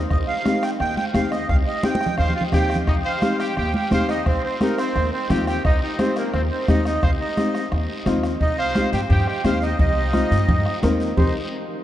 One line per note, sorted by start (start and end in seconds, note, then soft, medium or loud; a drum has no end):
0.10 0.25 C2 loud
0.10 0.18 D#5 medium
0.10 bombo low medium
0.10 bombo rim medium
0.10 long guiro medium
0.28 0.63 F5 loud
0.45 0.69 C4 medium
0.45 0.69 D#4 medium
0.45 0.69 G4 medium
0.45 bombo rim medium
0.45 high conga medium
0.45 short guiro medium
0.62 0.70 G5 medium
0.62 bombo rim medium
0.62 short guiro medium
0.80 0.94 D#2 loud
0.80 0.95 G5 loud
0.80 bombo rim medium
0.80 long guiro medium
0.97 1.05 G5 loud
0.97 high conga medium
1.14 1.42 D#2 medium
1.14 1.38 C4 medium
1.14 1.39 D#4 medium
1.14 1.39 G4 medium
1.14 1.31 F5 medium
1.14 bombo low medium
1.14 bombo rim medium
1.14 high conga medium
1.14 short guiro medium
1.31 1.48 D#5 medium
1.31 bombo rim medium
1.31 short guiro medium
1.49 1.63 C2 loud
1.49 1.57 F5 loud
1.49 bombo low medium
1.49 bombo rim medium
1.49 long guiro medium
1.66 1.84 D#5 medium
1.83 2.08 C4 medium
1.83 2.08 D#4 medium
1.83 2.08 G4 medium
1.83 2.16 G5 medium
1.83 bombo rim medium
1.83 high conga loud
1.83 short guiro medium
1.95 high conga medium
2.01 bombo rim medium
2.01 short guiro medium
2.06 low conga medium
2.18 2.32 D#2 medium
2.18 2.34 C5 medium
2.18 2.34 F5 loud
2.18 bombo rim medium
2.18 low conga medium
2.18 long guiro medium
2.30 low conga medium
2.35 2.43 F4 medium
2.35 2.43 F5 medium
2.41 low conga medium
2.52 2.81 D#2 medium
2.52 2.77 C4 medium
2.52 2.77 D#4 medium
2.52 2.77 G4 medium
2.52 2.77 G5 medium
2.52 bombo low medium
2.52 bombo rim medium
2.52 low conga medium
2.52 short guiro medium
2.64 low conga medium
2.70 bombo rim medium
2.70 short guiro medium
2.76 low conga medium
2.87 3.01 C2 loud
2.87 2.95 D#4 medium
2.87 2.95 D#5 medium
2.87 bombo low medium
2.87 bombo rim medium
2.87 long guiro medium
3.05 3.37 C5 medium
3.05 3.40 F5 medium
3.21 3.46 C4 medium
3.21 3.46 D#4 medium
3.21 3.46 G4 medium
3.21 bombo rim medium
3.21 high conga medium
3.21 short guiro medium
3.39 3.56 G4 medium
3.39 3.56 G5 medium
3.39 bombo rim medium
3.39 short guiro medium
3.57 3.71 D#2 medium
3.57 3.73 G4 medium
3.57 3.74 G5 loud
3.57 bombo rim medium
3.57 long guiro medium
3.74 3.90 G4 medium
3.74 3.91 G5 medium
3.74 high conga medium
3.91 4.19 D#2 medium
3.91 4.16 C4 medium
3.91 4.16 D#4 medium
3.91 4.16 G4 medium
3.91 4.08 C5 medium
3.91 4.10 F5 medium
3.91 bombo low medium
3.91 bombo rim medium
3.91 high conga medium
3.91 short guiro medium
4.09 4.25 D#4 medium
4.09 4.25 D#5 medium
4.09 bombo rim medium
4.09 short guiro medium
4.26 4.40 C2 loud
4.26 4.43 C4 medium
4.26 4.43 C5 medium
4.26 bombo low medium
4.26 bombo rim medium
4.26 long guiro medium
4.44 4.60 C4 medium
4.44 4.60 C5 medium
4.60 4.85 C4 medium
4.60 4.85 D#4 medium
4.60 4.77 D#4 medium
4.60 4.85 G4 medium
4.60 4.79 A#4 medium
4.60 bombo rim medium
4.60 high conga medium
4.60 short guiro medium
4.78 5.10 C4 medium
4.78 5.10 C5 medium
4.78 bombo rim medium
4.78 short guiro medium
4.96 5.09 D#2 medium
4.96 bombo rim medium
4.96 long guiro medium
5.13 5.29 C4 medium
5.13 5.29 C5 medium
5.30 5.58 D#2 medium
5.30 5.54 C4 medium
5.30 5.54 D#4 medium
5.30 5.54 F4 medium
5.30 5.46 G4 medium
5.30 5.46 G5 medium
5.30 bombo low medium
5.30 bombo rim medium
5.30 high conga medium
5.30 low conga medium
5.30 short guiro medium
5.47 5.64 G4 medium
5.47 5.63 G5 medium
5.47 bombo rim medium
5.47 short guiro medium
5.64 5.79 C2 loud
5.64 5.81 D#4 medium
5.64 5.81 D#5 medium
5.64 bombo low medium
5.64 bombo rim medium
5.64 long guiro medium
5.82 5.98 D#4 medium
5.82 6.00 D#5 medium
5.99 6.23 C4 medium
5.99 6.16 C4 medium
5.99 6.23 D#4 medium
5.99 6.23 G4 medium
5.99 6.15 C5 medium
5.99 bombo rim medium
5.99 high conga medium
5.99 short guiro medium
6.16 6.33 A#3 medium
6.16 6.34 A#4 medium
6.16 bombo rim medium
6.16 short guiro medium
6.34 6.48 D#2 medium
6.34 6.42 C4 medium
6.34 6.42 C5 medium
6.34 bombo rim medium
6.34 long guiro medium
6.51 6.67 C4 medium
6.51 6.67 C5 medium
6.67 6.96 D#2 medium
6.67 6.92 C4 medium
6.67 6.92 D#4 medium
6.67 6.84 D#4 medium
6.67 6.92 G4 medium
6.67 6.85 D#5 medium
6.67 bombo low medium
6.67 bombo rim medium
6.67 high conga medium
6.67 short guiro medium
6.85 7.02 D#4 medium
6.85 7.04 D#5 medium
6.85 bombo rim medium
6.85 short guiro medium
7.03 7.17 C2 loud
7.03 7.10 C5 medium
7.03 7.11 F5 medium
7.03 bombo low medium
7.03 bombo rim medium
7.03 long guiro medium
7.20 7.68 D#4 medium
7.20 7.69 D#5 medium
7.37 7.61 C4 medium
7.37 7.61 D#4 medium
7.37 7.62 G4 medium
7.37 bombo rim medium
7.37 high conga medium
7.37 short guiro medium
7.55 bombo rim medium
7.55 short guiro medium
7.72 7.86 D#2 medium
7.72 bombo rim medium
7.72 long guiro medium
8.06 8.34 D#2 medium
8.06 8.30 C4 medium
8.06 8.30 D#4 medium
8.06 8.31 F4 medium
8.06 bombo low medium
8.06 bombo rim medium
8.06 high conga medium
8.06 low conga medium
8.06 short guiro medium
8.23 bombo rim medium
8.23 short guiro medium
8.41 8.82 C2 medium
8.41 8.57 D#4 medium
8.41 8.59 D#5 medium
8.41 bombo low medium
8.41 long guiro medium
8.58 8.90 C5 medium
8.58 8.91 F5 medium
8.75 9.00 C4 medium
8.75 9.00 D#4 medium
8.75 9.00 G4 medium
8.75 bombo rim medium
8.75 high conga medium
8.75 short guiro medium
8.92 9.07 G2 medium
8.92 9.00 G4 medium
8.92 9.01 G5 medium
8.92 short guiro medium
9.09 9.24 G2 loud
9.09 9.26 G4 medium
9.09 9.26 G5 loud
9.09 bombo low medium
9.09 low conga medium
9.09 long guiro medium
9.27 9.43 G4 medium
9.27 9.44 G5 medium
9.27 bombo rim medium
9.44 9.72 D#2 loud
9.44 9.68 C4 medium
9.44 9.69 D#4 medium
9.44 9.69 G4 medium
9.44 9.61 C5 medium
9.44 9.63 F5 loud
9.44 bombo rim medium
9.44 high conga medium
9.44 short guiro medium
9.62 9.78 D#4 medium
9.62 9.78 D#5 medium
9.62 short guiro medium
9.79 10.21 C2 loud
9.79 10.79 D#4 medium
9.79 10.79 D#5 medium
9.79 bombo low medium
9.79 low conga medium
9.79 long guiro medium
10.13 10.38 C4 medium
10.13 10.38 D#4 medium
10.13 10.38 F4 medium
10.13 bombo rim medium
10.13 high conga medium
10.13 short guiro medium
10.31 10.45 G2 medium
10.31 short guiro medium
10.48 10.62 G2 loud
10.48 bombo low medium
10.48 low conga medium
10.48 long guiro medium
10.66 bombo rim medium
10.82 11.11 D#2 loud
10.82 11.07 C4 medium
10.82 11.07 D#4 medium
10.82 11.07 A#4 loud
10.82 bombo rim medium
10.82 high conga medium
10.82 short guiro medium
11.00 short guiro medium
11.17 11.34 C2 loud
11.17 11.33 C4 medium
11.17 11.34 D#4 medium
11.17 11.33 G4 medium
11.17 11.33 C5 medium
11.17 bombo low loud
11.17 low conga loud
11.17 long guiro loud